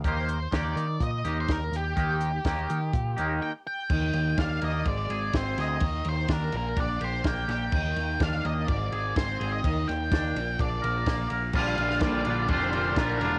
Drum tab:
CC |----------------|----------------|x---------------|----------------|
RD |----------------|----------------|--x-x-x-x-x-x-x-|x-x-x-x-x-x-x-x-|
HH |x-x-x-x-x-x-x-x-|x-x-x-x-x-x-----|----------------|----------------|
SD |----o-------o---|----o-----------|----o-------o-o-|----o-------o-o-|
BD |o---o---o---o---|o---o---o-------|o---o---o---o---|o---o---o---o---|

CC |x---------------|----------------|x---------------|
RD |--x-x-x-x-x-x-x-|x-x-x-x-x-x-x-x-|--x-x-x-x-x-x-x-|
HH |----------------|----------------|----------------|
SD |----o-------o---|--o-o-------o---|---oo-------o---|
BD |o---o---o---o---|o---o---o---o---|o---o---o---o---|